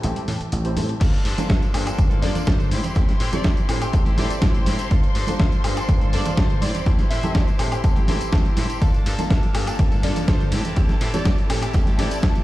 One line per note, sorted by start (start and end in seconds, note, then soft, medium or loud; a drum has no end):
0.00 0.11 A1 medium
0.00 1.00 E3 medium
0.00 1.01 A3 medium
0.00 0.25 C4 medium
0.00 0.25 E4 medium
0.00 0.25 G4 medium
0.00 1.02 A4 medium
0.00 0.25 A4 medium
0.00 1.02 A5 medium
0.00 closed hi-hat medium
0.06 1.01 C4 medium
0.06 1.02 G4 medium
0.15 closed hi-hat medium
0.15 tambourine soft
0.15 high conga medium
0.28 0.36 A2 medium
0.28 open hi-hat medium
0.28 low conga medium
0.40 muted slap bass stroke soft
0.40 closed hi-hat soft
0.40 tambourine medium
0.52 0.78 A1 medium
0.52 closed hi-hat medium
0.64 0.73 C4 medium
0.64 0.73 E4 medium
0.64 0.73 G4 medium
0.64 0.73 C5 medium
0.64 closed hi-hat soft
0.76 0.92 A2 medium
0.76 0.90 C4 medium
0.76 0.90 E4 medium
0.76 0.90 G4 medium
0.76 0.90 A4 medium
0.76 open hi-hat medium
0.76 high conga medium
0.76 low conga medium
0.89 closed hi-hat soft
0.89 tambourine medium
1.00 1.16 G1 loud
1.00 1.23 F3 medium
1.00 1.09 A#3 medium
1.00 1.24 A#3 loud
1.00 1.10 D4 medium
1.00 1.25 D4 loud
1.00 1.10 F4 medium
1.00 1.10 A4 medium
1.00 1.26 A4 loud
1.00 8.83 C5 medium
1.00 8.82 C6 medium
1.00 kick loud
1.00 closed hi-hat medium
1.00 crash loud
1.00 tambourine medium
1.13 closed hi-hat soft
1.13 tambourine soft
1.24 1.33 G2 medium
1.24 1.48 F3 medium
1.24 1.48 A#3 medium
1.24 1.49 D4 medium
1.24 1.50 A4 medium
1.24 open hi-hat loud
1.38 1.51 A#3 medium
1.38 1.51 D4 medium
1.38 1.51 F4 medium
1.38 1.51 A4 medium
1.38 muted slap bass stroke soft
1.38 closed hi-hat medium
1.38 tambourine medium
1.38 high conga medium
1.38 low conga medium
1.49 1.58 G1 medium
1.49 1.86 F3 loud
1.49 1.87 A#3 loud
1.49 1.86 D4 loud
1.49 1.84 A4 loud
1.49 kick loud
1.49 snare loud
1.49 closed hi-hat medium
1.62 closed hi-hat soft
1.62 tambourine soft
1.74 1.89 G2 medium
1.74 1.96 A#3 medium
1.74 1.96 D4 medium
1.74 1.96 F4 medium
1.74 1.96 A4 medium
1.74 open hi-hat loud
1.74 high woodblock medium
1.86 2.12 A#3 soft
1.86 2.10 D4 medium
1.86 2.09 A4 medium
1.86 closed hi-hat medium
1.86 tambourine medium
1.86 high woodblock medium
1.98 2.24 G1 medium
1.98 2.20 A#3 medium
1.98 2.20 D4 medium
1.98 2.20 F4 medium
1.98 2.20 A4 medium
1.98 kick loud
1.98 closed hi-hat medium
1.98 tambourine medium
2.10 2.22 A#3 medium
2.10 2.23 D4 medium
2.10 2.22 A4 medium
2.10 closed hi-hat soft
2.10 tambourine soft
2.10 high conga medium
2.22 2.31 G2 medium
2.22 2.45 F3 medium
2.22 2.70 A#3 medium
2.22 2.46 A#3 medium
2.22 2.70 D4 medium
2.22 2.47 D4 medium
2.22 2.70 F4 medium
2.22 2.70 A4 loud
2.22 2.47 A4 medium
2.22 2.42 D5 medium
2.22 open hi-hat loud
2.35 muted slap bass stroke soft
2.35 closed hi-hat medium
2.35 tambourine medium
2.35 low conga medium
2.46 2.73 G1 medium
2.46 2.70 F3 medium
2.46 2.71 A#3 medium
2.46 2.72 D4 medium
2.46 2.72 A4 loud
2.46 2.66 C5 loud
2.46 kick loud
2.46 snare loud
2.46 closed hi-hat medium
2.46 tambourine medium
2.60 closed hi-hat soft
2.60 tambourine soft
2.70 2.79 A2 loud
2.70 2.84 E3 medium
2.70 2.84 C4 medium
2.70 2.84 E4 medium
2.70 2.82 G4 medium
2.70 open hi-hat loud
2.70 high conga medium
2.83 2.95 C4 medium
2.83 2.95 E4 medium
2.83 2.95 G4 medium
2.83 closed hi-hat medium
2.83 tambourine medium
2.83 low conga medium
2.95 3.11 A1 loud
2.95 3.18 E3 medium
2.95 3.04 C4 medium
2.95 3.19 C4 loud
2.95 3.05 E4 medium
2.95 3.20 E4 loud
2.95 3.05 G4 medium
2.95 3.05 A4 loud
2.95 kick loud
2.95 closed hi-hat medium
2.95 tambourine medium
3.08 snare soft
3.08 closed hi-hat soft
3.08 tambourine soft
3.19 3.28 A2 medium
3.19 3.43 E3 medium
3.19 3.44 C4 medium
3.19 3.44 E4 medium
3.19 3.45 G4 medium
3.19 open hi-hat loud
3.32 3.45 C4 medium
3.32 3.46 E4 medium
3.32 3.46 G4 medium
3.32 3.46 A4 medium
3.32 3.52 D5 loud
3.32 muted slap bass stroke soft
3.32 closed hi-hat medium
3.32 tambourine medium
3.32 high conga loud
3.32 low conga medium
3.44 3.53 A1 medium
3.44 3.82 E3 medium
3.44 3.82 C4 loud
3.44 3.81 E4 loud
3.44 3.80 G4 loud
3.44 kick loud
3.44 snare loud
3.44 closed hi-hat medium
3.44 tambourine medium
3.57 closed hi-hat soft
3.57 tambourine soft
3.69 3.84 A2 medium
3.69 3.90 C4 medium
3.69 3.91 E4 medium
3.69 3.91 G4 medium
3.69 3.91 A4 medium
3.69 open hi-hat loud
3.69 high woodblock medium
3.81 4.07 C4 medium
3.81 4.06 E4 medium
3.81 4.04 G4 medium
3.81 closed hi-hat medium
3.81 tambourine medium
3.81 high woodblock medium
3.93 4.19 A1 medium
3.93 4.15 C4 medium
3.93 4.15 E4 medium
3.93 4.15 G4 medium
3.93 4.15 A4 medium
3.93 kick loud
3.93 closed hi-hat medium
3.93 tambourine medium
4.05 4.17 C4 medium
4.05 4.18 E4 medium
4.05 4.18 G4 medium
4.05 closed hi-hat soft
4.05 tambourine soft
4.05 high conga medium
4.17 4.26 A2 medium
4.17 4.40 E3 medium
4.17 4.88 C4 medium
4.17 4.41 C4 medium
4.17 4.88 E4 medium
4.17 4.42 E4 medium
4.17 4.88 G4 medium
4.17 4.43 G4 medium
4.17 4.89 A4 loud
4.17 4.26 D5 medium
4.17 snare soft
4.17 open hi-hat loud
4.30 4.38 D5 medium
4.30 muted slap bass stroke soft
4.30 closed hi-hat medium
4.30 tambourine medium
4.42 4.68 A1 medium
4.42 4.65 E3 medium
4.42 4.66 C4 medium
4.42 4.67 E4 loud
4.42 4.67 G4 loud
4.42 kick loud
4.42 snare loud
4.42 closed hi-hat medium
4.55 closed hi-hat soft
4.55 tambourine soft
4.66 4.75 A2 loud
4.66 4.79 E3 medium
4.66 4.80 C4 medium
4.66 4.79 E4 medium
4.66 4.77 G4 medium
4.66 open hi-hat loud
4.66 high conga medium
4.79 4.91 C4 medium
4.79 4.92 E4 medium
4.79 4.91 G4 medium
4.79 closed hi-hat medium
4.79 tambourine medium
4.91 5.06 G1 loud
4.91 5.13 F3 medium
4.91 5.00 A#3 medium
4.91 5.14 A#3 loud
4.91 5.00 D4 medium
4.91 5.15 D4 loud
4.91 5.00 F4 medium
4.91 5.00 A4 medium
4.91 5.16 A4 loud
4.91 kick loud
4.91 closed hi-hat medium
4.91 tambourine medium
5.03 closed hi-hat soft
5.03 tambourine soft
5.15 5.24 G2 medium
5.15 5.38 F3 medium
5.15 5.39 A#3 medium
5.15 5.39 D4 medium
5.15 5.40 A4 medium
5.15 open hi-hat loud
5.27 5.41 A#3 medium
5.27 5.41 D4 medium
5.27 5.41 F4 medium
5.27 5.41 A4 medium
5.27 muted slap bass stroke soft
5.27 closed hi-hat medium
5.27 tambourine medium
5.27 high conga loud
5.27 low conga medium
5.39 5.48 G1 medium
5.39 5.77 F3 loud
5.39 5.77 A#3 loud
5.39 5.76 D4 loud
5.39 5.75 A4 loud
5.39 kick loud
5.39 snare loud
5.39 closed hi-hat medium
5.39 tambourine medium
5.52 closed hi-hat soft
5.52 tambourine soft
5.64 5.80 G2 medium
5.64 5.86 A#3 medium
5.64 5.86 D4 medium
5.64 5.86 F4 medium
5.64 5.86 A4 medium
5.64 open hi-hat loud
5.64 high woodblock medium
5.76 6.02 A#3 medium
5.76 6.01 D4 medium
5.76 5.99 A4 medium
5.76 closed hi-hat medium
5.76 tambourine medium
5.76 high woodblock medium
5.88 6.15 G1 medium
5.88 6.10 A#3 medium
5.88 6.10 D4 medium
5.88 6.10 F4 medium
5.88 6.10 A4 medium
5.88 kick loud
5.88 closed hi-hat medium
6.00 6.12 A#3 medium
6.00 6.13 D4 medium
6.00 6.13 A4 medium
6.00 closed hi-hat soft
6.00 tambourine soft
6.00 high conga medium
6.12 6.21 G2 medium
6.12 6.35 F3 medium
6.12 6.60 A#3 medium
6.12 6.36 A#3 medium
6.12 6.60 D4 medium
6.12 6.37 D4 medium
6.12 6.61 F4 medium
6.12 6.61 A4 loud
6.12 6.38 A4 medium
6.12 6.32 D5 medium
6.12 open hi-hat loud
6.25 muted slap bass stroke soft
6.25 closed hi-hat medium
6.25 tambourine medium
6.25 low conga medium
6.37 6.64 G1 medium
6.37 6.60 F3 loud
6.37 6.62 A#3 loud
6.37 6.62 D4 loud
6.37 6.63 A4 loud
6.37 6.57 C5 loud
6.37 kick loud
6.37 snare loud
6.37 closed hi-hat medium
6.37 tambourine medium
6.50 closed hi-hat soft
6.50 tambourine soft
6.61 6.70 A2 loud
6.61 6.74 E3 medium
6.61 6.75 C4 medium
6.61 6.74 E4 medium
6.61 6.73 G4 medium
6.61 6.81 D5 medium
6.61 open hi-hat loud
6.61 high conga medium
6.74 6.85 C4 medium
6.74 6.86 E4 medium
6.74 6.86 G4 medium
6.74 closed hi-hat medium
6.74 tambourine medium
6.74 low conga medium
6.86 7.02 A1 loud
6.86 7.08 E3 medium
6.86 6.95 C4 medium
6.86 7.10 C4 loud
6.86 6.95 E4 medium
6.86 7.10 E4 loud
6.86 6.95 G4 medium
6.86 7.11 G4 loud
6.86 6.95 A4 medium
6.86 kick loud
6.86 closed hi-hat soft
6.99 snare soft
6.99 closed hi-hat soft
6.99 tambourine soft
7.10 7.19 A2 medium
7.10 7.33 E3 medium
7.10 7.34 C4 medium
7.10 7.35 E4 medium
7.10 7.35 G4 medium
7.10 7.47 E5 loud
7.10 open hi-hat loud
7.23 7.36 C4 medium
7.23 7.36 E4 medium
7.23 7.36 G4 medium
7.23 7.36 A4 loud
7.23 muted slap bass stroke soft
7.23 closed hi-hat soft
7.23 tambourine medium
7.23 high conga medium
7.23 low conga medium
7.34 7.43 A1 medium
7.34 7.72 E3 medium
7.34 7.72 C4 loud
7.34 7.72 E4 loud
7.34 7.70 G4 loud
7.34 kick loud
7.34 snare loud
7.34 closed hi-hat medium
7.34 tambourine medium
7.48 closed hi-hat soft
7.48 tambourine soft
7.59 7.75 A2 medium
7.59 7.81 C4 medium
7.59 7.81 E4 medium
7.59 7.81 G4 medium
7.59 7.81 A4 medium
7.59 open hi-hat loud
7.59 high woodblock medium
7.71 7.97 C4 medium
7.71 7.96 E4 medium
7.71 7.94 G4 medium
7.71 closed hi-hat soft
7.71 tambourine medium
7.71 high woodblock medium
7.83 8.10 A1 medium
7.83 8.05 C4 medium
7.83 8.05 E4 medium
7.83 8.06 G4 medium
7.83 8.06 A4 medium
7.83 kick loud
7.83 closed hi-hat medium
7.83 tambourine medium
7.96 8.07 C4 medium
7.96 8.08 E4 medium
7.96 8.08 G4 medium
7.96 closed hi-hat soft
7.96 tambourine soft
7.96 high conga medium
8.07 8.16 A2 loud
8.07 8.31 E3 medium
8.07 8.78 C4 medium
8.07 8.31 C4 medium
8.07 8.79 E4 medium
8.07 8.32 E4 medium
8.07 8.79 G4 medium
8.07 8.33 G4 medium
8.07 8.79 A4 loud
8.07 snare soft
8.07 open hi-hat loud
8.21 muted slap bass stroke soft
8.21 closed hi-hat medium
8.21 tambourine medium
8.32 8.48 A1 medium
8.32 8.55 E3 medium
8.32 8.56 C4 medium
8.32 8.57 E4 loud
8.32 8.58 G4 loud
8.32 kick loud
8.32 snare loud
8.32 closed hi-hat medium
8.32 tambourine medium
8.45 closed hi-hat soft
8.45 tambourine soft
8.56 8.65 A2 loud
8.56 8.69 E3 medium
8.56 8.70 C4 medium
8.56 8.69 E4 medium
8.56 8.68 G4 medium
8.56 open hi-hat loud
8.56 high conga medium
8.69 8.81 C4 medium
8.69 8.82 E4 medium
8.69 8.81 G4 medium
8.69 closed hi-hat medium
8.69 tambourine medium
8.81 8.97 G1 loud
8.81 9.04 F3 medium
8.81 8.90 A#3 medium
8.81 9.05 A#3 medium
8.81 8.90 D4 medium
8.81 9.06 D4 medium
8.81 8.90 F4 medium
8.81 12.44 A4 medium
8.81 8.90 A4 medium
8.81 9.07 A4 loud
8.81 12.44 A5 medium
8.81 kick loud
8.81 closed hi-hat soft
8.81 ride medium
8.81 tambourine medium
8.94 closed hi-hat soft
8.94 tambourine soft
9.05 9.14 G2 medium
9.05 9.29 F3 medium
9.05 9.29 A#3 medium
9.05 9.30 D4 medium
9.05 9.31 A4 medium
9.05 open hi-hat loud
9.05 ride medium
9.18 9.31 A#3 medium
9.18 9.31 D4 medium
9.18 9.31 F4 medium
9.18 9.32 A4 medium
9.18 muted slap bass stroke soft
9.18 closed hi-hat medium
9.18 tambourine medium
9.18 high conga loud
9.18 low conga medium
9.30 9.38 G1 medium
9.30 9.67 F3 medium
9.30 9.67 A#3 loud
9.30 9.67 D4 loud
9.30 9.65 A4 loud
9.30 kick loud
9.30 snare loud
9.30 closed hi-hat medium
9.30 ride medium
9.30 tambourine medium
9.43 closed hi-hat soft
9.43 tambourine soft
9.54 9.70 G2 medium
9.54 9.76 A#3 medium
9.54 9.76 D4 medium
9.54 9.76 F4 medium
9.54 9.76 A4 medium
9.54 open hi-hat loud
9.54 ride medium
9.54 high woodblock medium
9.67 9.93 A#3 medium
9.67 9.92 D4 medium
9.67 9.90 A4 medium
9.67 closed hi-hat medium
9.67 tambourine medium
9.67 high woodblock medium
9.79 10.05 G1 medium
9.79 10.00 A#3 medium
9.79 10.00 D4 medium
9.79 10.01 F4 medium
9.79 10.01 A4 medium
9.79 kick loud
9.79 closed hi-hat medium
9.79 ride medium
9.91 10.03 A#3 medium
9.91 10.04 D4 medium
9.91 10.03 A4 medium
9.91 closed hi-hat soft
9.91 tambourine soft
9.91 high conga medium
10.03 10.11 G2 medium
10.03 10.26 F3 medium
10.03 10.51 A#3 medium
10.03 10.27 A#3 medium
10.03 10.51 D4 medium
10.03 10.28 D4 medium
10.03 10.51 F4 medium
10.03 10.51 A4 loud
10.03 10.28 A4 medium
10.03 10.23 D5 medium
10.03 open hi-hat loud
10.03 ride medium
10.16 muted slap bass stroke soft
10.16 closed hi-hat medium
10.16 tambourine medium
10.16 low conga medium
10.27 10.54 G1 medium
10.27 10.51 F3 medium
10.27 10.52 A#3 medium
10.27 10.53 D4 loud
10.27 10.53 A4 loud
10.27 10.47 C5 medium
10.27 kick loud
10.27 snare loud
10.27 closed hi-hat medium
10.27 ride medium
10.27 tambourine medium
10.40 closed hi-hat soft
10.40 tambourine soft
10.51 10.60 A2 loud
10.51 10.64 E3 medium
10.51 10.65 C4 medium
10.51 10.65 E4 medium
10.51 10.63 G4 medium
10.51 open hi-hat loud
10.51 ride medium
10.51 high conga loud
10.64 10.76 C4 medium
10.64 10.76 E4 medium
10.64 10.76 G4 medium
10.64 closed hi-hat soft
10.64 tambourine medium
10.64 low conga medium
10.76 10.92 A1 loud
10.76 10.99 E3 medium
10.76 10.85 C4 medium
10.76 11.00 C4 medium
10.76 10.85 E4 medium
10.76 11.01 E4 loud
10.76 10.85 G4 medium
10.76 11.02 G4 loud
10.76 10.85 A4 medium
10.76 kick loud
10.76 closed hi-hat medium
10.76 ride medium
10.76 tambourine medium
10.89 snare soft
10.89 closed hi-hat soft
10.89 tambourine soft
11.00 11.09 A2 medium
11.00 11.24 E3 medium
11.00 11.25 C4 medium
11.00 11.25 E4 medium
11.00 11.26 G4 medium
11.00 open hi-hat loud
11.00 ride medium
11.13 11.26 C4 medium
11.13 11.26 E4 medium
11.13 11.26 G4 medium
11.13 11.27 A4 medium
11.13 11.32 D5 loud
11.13 muted slap bass stroke soft
11.13 closed hi-hat medium
11.13 tambourine medium
11.13 high conga medium
11.13 low conga medium
11.25 11.33 A1 medium
11.25 11.62 E3 medium
11.25 11.63 C4 medium
11.25 11.62 E4 loud
11.25 11.60 G4 loud
11.25 kick loud
11.25 snare loud
11.25 closed hi-hat medium
11.25 ride medium
11.25 tambourine medium
11.38 closed hi-hat soft
11.38 tambourine soft
11.50 11.65 A2 medium
11.50 11.71 C4 medium
11.50 11.71 E4 medium
11.50 11.71 G4 medium
11.50 11.72 A4 medium
11.50 open hi-hat loud
11.50 ride medium
11.50 high woodblock medium
11.61 11.87 C4 soft
11.61 11.86 E4 medium
11.61 11.85 G4 medium
11.61 closed hi-hat medium
11.61 tambourine medium
11.61 high woodblock medium
11.73 12.00 A1 medium
11.73 11.96 C4 medium
11.73 11.96 E4 medium
11.73 11.96 G4 medium
11.73 11.96 A4 medium
11.73 kick loud
11.73 closed hi-hat medium
11.73 ride medium
11.73 tambourine medium
11.86 11.97 C4 medium
11.86 11.98 E4 medium
11.86 11.98 G4 medium
11.86 closed hi-hat soft
11.86 tambourine soft
11.86 high conga medium
11.97 12.06 A2 medium
11.97 12.21 E3 medium
11.97 12.44 C4 loud
11.97 12.22 C4 medium
11.97 12.44 E4 medium
11.97 12.22 E4 medium
11.97 12.44 G4 medium
11.97 12.23 G4 medium
11.97 12.44 A4 loud
11.97 12.07 D5 medium
11.97 snare soft
11.97 open hi-hat loud
11.97 ride medium
12.11 12.19 D5 medium
12.11 muted slap bass stroke soft
12.11 closed hi-hat medium
12.11 tambourine medium
12.22 12.44 A1 medium
12.22 12.44 E3 medium
12.22 12.44 C4 medium
12.22 12.44 E4 loud
12.22 12.44 G4 loud
12.22 kick loud
12.22 snare loud
12.22 closed hi-hat medium
12.22 ride medium
12.22 tambourine medium
12.35 closed hi-hat soft
12.35 tambourine soft